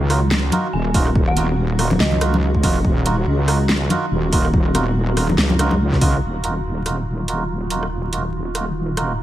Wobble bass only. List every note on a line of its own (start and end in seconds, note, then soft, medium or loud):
0.00 0.51 C#2 loud
0.73 1.99 D#1 loud
2.00 2.62 C#2 medium
2.63 2.83 F1 medium
2.85 3.25 D#1 loud
3.27 3.89 C#2 medium
4.11 5.37 D#1 loud
5.38 6.21 C#2 medium
6.23 9.23 D#1 medium